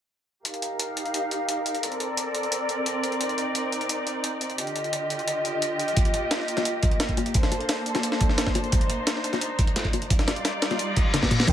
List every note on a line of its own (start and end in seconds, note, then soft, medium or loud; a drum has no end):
0.45 1.82 D#4 medium
0.45 1.82 G4 medium
0.45 4.55 A#4 medium
0.45 1.82 F5 medium
0.45 closed hi-hat medium
0.54 closed hi-hat soft
0.62 closed hi-hat medium
0.80 closed hi-hat medium
0.97 closed hi-hat medium
1.06 closed hi-hat soft
1.14 closed hi-hat medium
1.31 closed hi-hat medium
1.49 closed hi-hat medium
1.66 closed hi-hat medium
1.75 closed hi-hat soft
1.83 4.56 C4 medium
1.83 3.20 A4 medium
1.83 4.56 D5 medium
1.83 closed hi-hat medium
1.92 closed hi-hat soft
2.00 closed hi-hat medium
2.17 closed hi-hat medium
2.35 closed hi-hat medium
2.43 closed hi-hat soft
2.52 closed hi-hat medium
2.69 closed hi-hat medium
2.86 closed hi-hat medium
3.04 closed hi-hat medium
3.12 closed hi-hat soft
3.21 4.57 D#4 medium
3.21 closed hi-hat medium
3.29 closed hi-hat soft
3.38 closed hi-hat medium
3.55 closed hi-hat medium
3.72 closed hi-hat medium
3.81 closed hi-hat soft
3.89 closed hi-hat medium
4.07 closed hi-hat medium
4.24 closed hi-hat medium
4.41 closed hi-hat medium
4.50 closed hi-hat soft
4.58 5.95 D3 medium
4.58 7.32 F4 medium
4.58 7.32 G4 medium
4.58 7.32 D#5 medium
4.58 closed hi-hat medium
4.67 closed hi-hat soft
4.76 closed hi-hat medium
4.84 closed hi-hat soft
4.93 closed hi-hat medium
5.10 closed hi-hat medium
5.19 closed hi-hat soft
5.28 closed hi-hat medium
5.45 closed hi-hat medium
5.62 closed hi-hat medium
5.79 closed hi-hat medium
5.88 closed hi-hat soft
5.97 10.07 A#3 medium
5.97 kick loud
5.97 closed hi-hat medium
6.05 closed hi-hat soft
6.14 closed hi-hat medium
6.31 snare loud
6.31 closed hi-hat medium
6.40 snare soft
6.48 closed hi-hat medium
6.57 snare soft
6.57 closed hi-hat soft
6.57 high bongo soft
6.65 closed hi-hat medium
6.83 kick loud
6.83 closed hi-hat medium
6.91 closed hi-hat soft
7.00 snare loud
7.00 closed hi-hat medium
7.09 kick medium
7.09 closed hi-hat soft
7.17 closed hi-hat medium
7.17 high bongo soft
7.26 closed hi-hat soft
7.34 10.08 D4 medium
7.34 8.71 A4 medium
7.34 10.08 C5 medium
7.34 kick loud
7.34 closed hi-hat medium
7.43 snare soft
7.43 closed hi-hat soft
7.52 closed hi-hat medium
7.52 high bongo soft
7.60 closed hi-hat soft
7.69 snare loud
7.69 closed hi-hat medium
7.69 open hi-hat medium
7.86 closed hi-hat medium
7.95 snare medium
7.95 closed hi-hat soft
7.95 high bongo soft
8.03 closed hi-hat medium
8.12 snare medium
8.21 kick medium
8.21 closed hi-hat medium
8.29 snare soft
8.38 snare loud
8.38 closed hi-hat medium
8.47 kick medium
8.47 snare medium
8.55 closed hi-hat medium
8.55 high bongo soft
8.64 closed hi-hat soft
8.72 10.09 D#4 medium
8.72 kick loud
8.72 closed hi-hat medium
8.81 closed hi-hat soft
8.90 closed hi-hat medium
9.07 snare loud
9.07 closed hi-hat medium
9.16 snare soft
9.24 closed hi-hat medium
9.33 snare soft
9.33 closed hi-hat soft
9.33 high bongo soft
9.41 closed hi-hat medium
9.59 kick medium
9.59 closed hi-hat medium
9.67 closed hi-hat soft
9.76 snare loud
9.76 closed hi-hat loud
9.76 closed hi-hat medium
9.85 kick medium
9.85 closed hi-hat soft
9.93 closed hi-hat medium
9.93 high bongo soft
10.02 closed hi-hat soft
10.10 11.47 G3 medium
10.10 11.47 D#4 medium
10.10 11.47 F4 medium
10.10 11.47 D5 medium
10.10 kick loud
10.10 closed hi-hat medium
10.19 snare medium
10.19 closed hi-hat soft
10.27 snare loud
10.27 closed hi-hat medium
10.27 high bongo soft
10.36 closed hi-hat soft
10.45 snare medium
10.45 closed hi-hat medium
10.62 snare loud
10.62 closed hi-hat medium
10.71 snare soft
10.71 closed hi-hat soft
10.71 high bongo soft
10.79 closed hi-hat medium
10.79 reverse cymbal medium
10.96 kick loud
10.96 closed hi-hat medium
11.14 snare loud
11.14 closed hi-hat medium
11.14 high tom medium
11.23 kick medium
11.23 snare soft
11.23 snare medium
11.31 closed hi-hat medium
11.31 mid tom medium
11.31 high bongo soft
11.40 snare soft
11.40 snare medium
11.40 closed hi-hat soft
11.47 11.53 F2 loud
11.47 11.53 F3 loud
11.47 11.53 G3 medium
11.47 11.53 D#4 loud
11.47 11.53 D#4 medium
11.47 11.53 A#4 medium
11.47 11.53 A#4 loud
11.47 11.53 G5 loud
11.47 kick loud
11.47 closed hi-hat loud
11.47 closed hi-hat medium
11.47 crash loud
11.47 downlifter medium